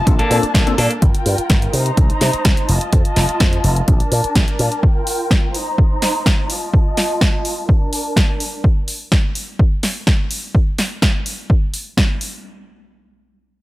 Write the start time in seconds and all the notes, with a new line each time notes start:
Already playing: A5
0.07 A#1 A#3 C4 D4 F4 A4, muted clean electric guitar stroke, kick, closed hi-hat
0.19 A#3 D4 A4, muted slap bass stroke, closed hi-hat
0.30 A#2 A#3 C4 D4 F4 A4, open hi-hat
0.43 muted slap bass stroke, closed hi-hat
0.54 A#1 A#3 D4 A4, kick, snare, closed hi-hat
0.67 A#3 C4 D4 F4 A4, closed hi-hat
0.78 A#2 A#3 D4 A4, open hi-hat
0.91 closed hi-hat
1.02 G1 F4 A#4 G5, kick, closed hi-hat
1.15 muted slap bass stroke, closed hi-hat
1.26 G2, open hi-hat
1.38 muted slap bass stroke, closed hi-hat
1.50 G1, kick, snare, closed hi-hat
1.62 closed hi-hat
1.73 C3 D#4 C5 A#5, open hi-hat
1.86 closed hi-hat
1.97 C2, kick, closed hi-hat
2.10 muted slap bass stroke, closed hi-hat
2.21 C3, snare, open hi-hat
2.33 muted slap bass stroke, closed hi-hat
2.45 C2, kick, snare, closed hi-hat
2.57 closed hi-hat
2.69 F1 F4 D#5 A5, open hi-hat
2.81 closed hi-hat
2.93 F2, kick, closed hi-hat
3.05 muted slap bass stroke, closed hi-hat
3.16 F1, snare, open hi-hat
3.29 muted slap bass stroke, closed hi-hat
3.40 F2, kick, snare, closed hi-hat
3.53 closed hi-hat
3.64 F1, open hi-hat
3.76 closed hi-hat
3.88 A#1 D4 A#4 A5, kick, closed hi-hat
4.00 muted slap bass stroke, closed hi-hat
4.12 A#2, open hi-hat
4.24 muted slap bass stroke, closed hi-hat
4.35 A#1, kick, snare, closed hi-hat
4.48 closed hi-hat
4.59 A#2, open hi-hat
4.72 closed hi-hat
4.83 F4 G5, kick
5.07 open hi-hat
5.31 kick, snare
5.54 D#4 C5 A#5, open hi-hat
5.78 kick
6.02 snare, open hi-hat
6.26 kick, snare
6.50 F4 D#5 A5, open hi-hat
6.74 kick
6.97 snare, open hi-hat
7.21 kick, snare
7.45 open hi-hat
7.69 D4 A#4 A5, kick
7.93 open hi-hat
8.16 kick, snare
8.40 open hi-hat
8.64 kick
8.88 open hi-hat
9.12 kick, snare
9.35 open hi-hat
9.59 kick
9.83 snare, open hi-hat
10.07 kick, snare
10.31 open hi-hat
10.55 kick
10.78 snare, open hi-hat
11.02 kick, snare
11.26 open hi-hat
11.50 kick
11.74 open hi-hat
11.97 kick, snare
12.21 open hi-hat